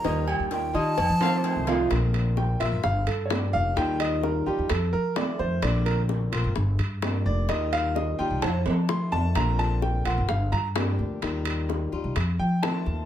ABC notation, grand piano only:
X:1
M:4/4
L:1/8
Q:1/4=129
K:Bb
V:1 name="Grand piano"
[E,Ee] [G,Gg]2 [Eee']2 [Ccc']2 [F,Ff] | z2 g =e f A [_d=d] f | g e B G A B d c | d B z4 z d |
e f e g a2 c' a | b a g _g f b z2 | z4 z g a2 |]